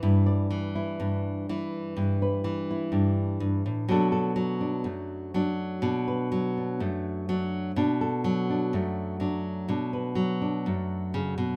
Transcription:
\new Staff \with { instrumentName = "Nylon-string guitar" } { \time 4/4 \key b \phrygian \tempo 4 = 62 << { e'16 d''8 e'16 d'8 e'8 e'16 b'8 e'16 d'4 | <fis a d' a'>16 a'8 d'16 a8 d'8 d'16 b'8 d'16 a8 d'8 | d'16 a'8 d'16 a8 d'8 d'16 b'8 d'16 a4 | } \\ { <g, e>8 e8 g,8 e8 g,8 e8 g,8 g,16 a,16 | b,8 fis8 fis,8 fis8 b,8 fis8 fis,8 fis8 | b,8 fis8 fis,8 fis8 b,8 fis8 fis,8 cis16 b,16 | } >> }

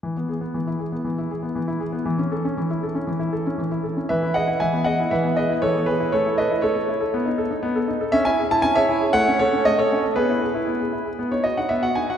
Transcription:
\new Staff \with { instrumentName = "Grand piano" } { \time 4/4 \key e \major \tempo 4 = 118 << { r1 | r1 | <b' e''>8 <dis'' fis''>8 <e'' gis''>8 <dis'' fis''>8 <b' e''>8 <b' dis''>8 <a' cis''>8 <gis' b'>8 | <a' cis''>8 <b' dis''>8 <a' cis''>2~ <a' cis''>8 r8 |
e''16 <e'' gis''>8 a''16 gis''16 <cis'' e''>8. <cis'' fis''>8 <a' cis''>8 dis''16 <a' cis''>8. | <gis' b'>2~ <gis' b'>16 cis''16 dis''16 fis''16 e''16 fis''16 gis''16 fis''16 | } \\ { e16 b16 gis'16 b16 e16 e'16 gis'16 b16 e16 e'16 gis'16 b16 e16 e'16 gis'16 b16 | e16 cis'16 a'16 cis'16 e16 e'16 a'16 cis'16 e16 e'16 a'16 cis'16 e16 e'16 a'16 cis'16 | e16 e'16 gis'16 e'16 e16 b16 gis'16 e'16 e16 b16 gis'16 e'16 e16 b16 r16 e'16 | a16 e'16 a'16 e'16 a16 a'16 e'16 a'16 b16 dis'16 a'16 dis'16 b16 a'16 dis'16 a'16 |
cis'16 e'16 gis'16 e'16 cis'16 gis'16 e'16 gis'16 a16 cis'16 r16 cis'16 a16 r16 cis'16 a'16 | b16 e'16 gis'16 e'16 b16 gis'16 e'16 gis'16 b16 dis'16 fis'16 dis'16 b16 fis'16 dis'16 fis'16 | } >> }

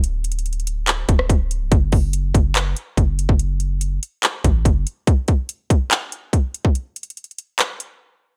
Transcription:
<<
  \new Staff \with { instrumentName = "808-style bass" } { \clef bass \time 4/4 \key fis \minor \tempo 4 = 143 d,,2~ d,,8 d,,8 d,,8. cis,,16 | fis,,8 fis,,4 fis,,4 r8 fis,,8. fis,,16~ | fis,,4. r4 a,,8 fis,,8 r8 | r1 |
r1 | }
  \new DrumStaff \with { instrumentName = "Drums" } \drummode { \time 4/4 \tuplet 3/2 { hh16 r16 r16 <hh hho>16 hh16 hh16 hh16 hh16 hh16 hh16 r16 r16 } <hc hh>8 <hh bd>16 ss16 <hh bd>8 hh8 | <hh bd>8 <hho bd>8 hh8 <hh bd>8 <hc hh>8 hh8 <hh bd>8 hh16 bd16 | hh8 hh8 hh8 hh8 <hc hh>8 <hh bd>8 <hh bd>8 hh8 | <hh bd>8 <hh bd>8 hh8 <hh bd>8 <hc hh>8 hh8 <hh bd>8 hh16 bd16 |
\tuplet 3/2 { hh16 r16 r16 hh16 hh16 hh16 hh16 hh16 hh16 hh16 r16 r16 } <hc hh>8 hh8 r4 | }
>>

